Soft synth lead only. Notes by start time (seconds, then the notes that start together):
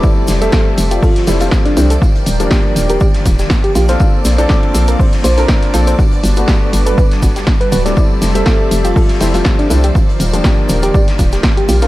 0.42 A4
0.91 F4
1.66 D4
1.77 D4
2.90 G4
3.64 G4
3.75 G4
3.89 F5
4.38 D5
4.50 D5
5.24 C5
5.37 C5
6.86 B4
7.61 B4
7.72 B4
7.85 D5
8.35 A4
8.85 F4
9.59 D4
9.70 D4
10.83 G4
11.57 G4
11.69 G4
11.82 F5